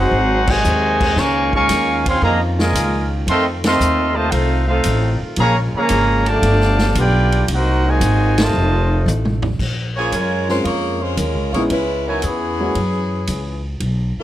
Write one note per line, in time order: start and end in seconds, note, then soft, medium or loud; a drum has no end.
0.00 5.34 D#3 medium
0.00 1.00 F#3 loud
0.00 1.00 G#3 medium
0.00 0.48 C4 medium
0.00 1.00 C4 medium
0.00 0.48 D#4 medium
0.00 0.49 D#4 medium
0.00 0.48 F#4 medium
0.00 0.50 G#4 medium
0.00 0.48 C5 medium
0.00 0.49 F#5 loud
0.11 0.63 G#1 medium
0.47 1.18 C3 medium
0.47 1.18 D#3 medium
0.47 1.17 G#3 medium
0.47 1.18 F#4 loud
0.47 1.18 C5 loud
0.47 1.18 D#5 loud
0.47 1.18 G#5 loud
0.47 kick loud
0.47 crash medium
0.64 1.16 D#2 loud
0.64 hi-hat pedal medium
1.01 kick medium
1.01 crash medium
1.16 1.68 C#2 medium
1.16 1.53 G#3 loud
1.16 3.26 A#3 medium
1.16 1.53 A#3 loud
1.16 3.26 C#4 medium
1.16 1.53 C#4 loud
1.16 3.26 F4 medium
1.16 1.54 A#4 loud
1.16 1.54 F5 loud
1.16 1.54 G#5 loud
1.16 1.53 C#6 loud
1.16 snare soft
1.53 2.03 G#3 loud
1.53 2.03 A#3 loud
1.53 2.03 C#4 medium
1.53 2.03 A#4 medium
1.53 2.03 F5 loud
1.53 2.03 G#5 loud
1.53 2.03 C#6 loud
1.53 kick medium
1.69 2.21 D#2 medium
1.69 snare soft
1.69 hi-hat pedal medium
1.69 ride medium
2.06 2.22 C4 medium
2.06 2.22 G#4 medium
2.06 2.23 C#5 medium
2.06 2.22 F5 medium
2.06 2.23 C6 loud
2.06 kick medium
2.06 ride medium
2.22 2.73 F2 loud
2.22 2.38 A#2 medium
2.22 2.39 F3 medium
2.22 2.38 A#3 medium
2.22 2.39 G#4 medium
2.22 2.40 D#5 medium
2.22 2.39 F5 medium
2.22 2.39 A#5 medium
2.59 3.08 A#2 medium
2.59 3.08 F3 medium
2.59 3.08 G#3 medium
2.59 3.07 F4 medium
2.59 3.07 A#4 medium
2.59 3.07 D#5 medium
2.59 3.08 G#5 loud
2.59 snare medium
2.73 3.25 C#2 loud
2.73 hi-hat pedal medium
2.73 ride medium
3.27 3.78 F2 medium
3.27 3.44 D#3 loud
3.27 5.36 A3 medium
3.27 3.45 A3 loud
3.27 5.36 C4 medium
3.27 3.45 C4 loud
3.27 7.45 F4 medium
3.27 3.45 A4 loud
3.27 3.45 D#5 medium
3.27 3.44 F5 loud
3.27 3.45 C6 loud
3.27 ride medium
3.64 4.13 D#3 medium
3.64 4.13 A3 loud
3.64 4.13 C4 loud
3.64 4.13 A4 loud
3.64 4.14 D#5 loud
3.64 4.14 F5 loud
3.64 4.14 C6 loud
3.64 snare medium
3.64 ride medium
3.80 4.31 D#2 loud
3.80 hi-hat pedal medium
4.14 4.32 C3 medium
4.14 4.32 D#3 medium
4.14 4.29 A3 medium
4.14 4.32 F4 medium
4.14 4.30 C5 medium
4.14 4.32 D#5 medium
4.14 4.33 A5 medium
4.30 4.84 C2 medium
4.30 4.66 A3 medium
4.30 4.66 C4 medium
4.30 4.67 D#4 medium
4.30 4.66 F4 medium
4.30 4.67 A4 medium
4.30 4.67 C5 medium
4.30 4.66 F5 medium
4.30 ride medium
4.67 5.17 A3 medium
4.67 5.17 C4 medium
4.67 5.18 D#4 medium
4.67 5.17 F4 medium
4.67 5.18 A4 medium
4.67 5.18 C5 medium
4.67 5.17 F5 medium
4.84 5.19 A1 loud
4.84 hi-hat pedal medium
4.84 ride medium
5.22 muted upright bass stroke soft
5.36 5.72 A#1 medium
5.36 6.42 C#3 medium
5.36 5.54 C#3 loud
5.36 5.53 F3 loud
5.36 6.42 G#3 medium
5.36 6.42 A#3 medium
5.36 5.53 A#3 loud
5.36 5.55 G#4 loud
5.36 5.56 C#5 loud
5.36 5.55 F5 loud
5.36 5.55 A#5 loud
5.36 ride medium
5.74 6.24 C#3 loud
5.74 6.24 F3 loud
5.74 6.25 A#3 loud
5.74 6.25 G#4 loud
5.74 6.24 C#5 loud
5.74 6.25 F5 loud
5.74 6.24 A#5 loud
5.74 muted upright bass stroke soft
5.89 6.42 G#1 medium
5.89 hi-hat pedal medium
5.89 ride medium
6.26 6.96 D3 medium
6.26 6.97 F3 loud
6.26 6.96 A3 medium
6.26 6.97 G4 loud
6.26 6.97 D5 loud
6.26 6.96 F5 loud
6.26 6.96 A5 loud
6.26 ride medium
6.42 6.94 G1 loud
6.42 7.48 D3 medium
6.42 7.48 G3 medium
6.42 7.48 B3 medium
6.42 ride medium
6.61 snare soft
6.79 snare medium
6.95 7.47 B1 loud
6.95 7.46 B3 medium
6.95 7.46 D4 medium
6.95 7.46 F4 medium
6.95 7.46 G4 medium
6.95 7.47 B4 medium
6.95 7.47 D5 medium
6.95 7.46 G5 loud
6.95 hi-hat pedal medium
6.95 ride medium
7.32 ride medium
7.48 8.00 C2 medium
7.48 9.58 C3 medium
7.48 8.54 F#3 medium
7.48 8.54 A#3 medium
7.48 7.86 A#3 medium
7.48 9.58 D#4 loud
7.48 7.87 D#4 medium
7.48 7.86 F#4 medium
7.48 ride medium
7.53 7.88 D#4 medium
7.53 7.88 A#4 medium
7.53 7.88 C5 medium
7.53 7.88 F#5 medium
7.87 8.39 A#2 medium
7.87 8.38 D#3 medium
7.87 8.39 G#3 medium
7.87 8.41 F#4 medium
7.87 8.41 C5 medium
7.87 8.41 D#5 medium
7.87 8.40 G#5 loud
8.01 8.52 G#1 loud
8.01 hi-hat pedal medium
8.01 ride medium
8.38 9.08 C3 medium
8.38 9.08 D#3 medium
8.38 9.08 A3 medium
8.38 snare loud
8.38 ride medium
8.42 9.10 F4 medium
8.42 9.10 C5 medium
8.42 9.10 D#5 medium
8.42 9.09 A5 loud
8.54 9.05 F1 medium
8.54 9.59 F3 medium
8.54 9.59 A3 medium
9.06 9.58 A1 loud
9.06 hi-hat pedal medium
9.06 high tom medium
9.25 mid tom medium
9.42 floor tom loud
9.59 10.11 A#1 medium
9.59 kick medium
9.59 crash medium
9.96 10.12 F3 medium
9.96 10.12 A#3 medium
9.96 10.12 C#4 medium
9.96 10.62 F4 medium
9.96 10.12 G#4 medium
9.96 10.62 A#4 medium
9.96 10.62 C#5 medium
9.96 10.62 G#5 loud
10.12 10.64 F#2 medium
10.12 10.47 G#3 medium
10.12 10.47 C#4 medium
10.12 10.47 F4 medium
10.12 10.50 A#4 medium
10.12 hi-hat pedal medium
10.12 ride medium
10.48 10.64 G#3 medium
10.48 11.15 G#3 medium
10.48 11.15 C4 medium
10.48 10.64 C#4 medium
10.48 11.15 C#4 medium
10.48 10.63 F4 medium
10.48 11.16 F4 medium
10.48 11.15 A#4 medium
10.48 10.64 C5 loud
10.48 snare soft
10.64 11.16 F2 medium
10.64 10.99 A#3 medium
10.64 10.99 F4 medium
10.64 10.99 G#4 medium
10.64 10.99 C#5 loud
10.64 ride medium
11.01 11.17 G#3 medium
11.01 11.16 C#4 medium
11.01 11.16 F4 medium
11.01 11.18 C5 loud
11.17 11.35 D#2 loud
11.17 11.54 G#3 medium
11.17 11.54 C#4 medium
11.17 11.52 F4 medium
11.17 11.54 A#4 medium
11.17 hi-hat pedal medium
11.17 ride medium
11.35 11.52 C#2 medium
11.53 11.69 A#1 medium
11.53 11.70 G#3 medium
11.53 11.61 A#3 medium
11.53 11.70 B3 medium
11.53 11.70 C#4 medium
11.53 11.70 D#4 medium
11.53 11.70 E4 medium
11.53 11.61 F4 medium
11.53 11.61 G#4 medium
11.53 11.61 C#5 medium
11.53 ride soft
11.70 12.22 C#2 medium
11.70 12.05 G#3 medium
11.70 12.04 C#4 medium
11.70 12.05 E4 medium
11.70 12.05 B4 loud
11.70 ride medium
12.07 12.23 F#3 medium
12.07 12.23 B3 medium
12.07 12.24 D#4 medium
12.07 12.73 E4 medium
12.07 12.24 A#4 medium
12.07 12.73 B4 medium
12.07 12.73 C#5 medium
12.07 12.73 G#5 loud
12.22 12.75 E2 medium
12.22 13.65 E3 medium
12.22 12.76 B3 medium
12.22 13.65 C#4 medium
12.22 13.66 G#4 medium
12.22 hi-hat pedal medium
12.22 ride medium
12.60 12.75 G#3 medium
12.60 12.75 A#3 medium
12.60 12.75 C#4 medium
12.60 12.75 E4 medium
12.60 12.75 F#4 medium
12.75 13.27 F#2 medium
12.75 ride medium
13.27 13.80 C#2 loud
13.27 hi-hat pedal medium
13.27 ride medium
13.80 14.15 B1 medium
13.80 ride medium
14.17 14.23 G#3 medium
14.17 14.23 D#4 medium
14.17 14.23 F#4 medium
14.17 14.23 B4 medium
14.17 muted upright bass stroke soft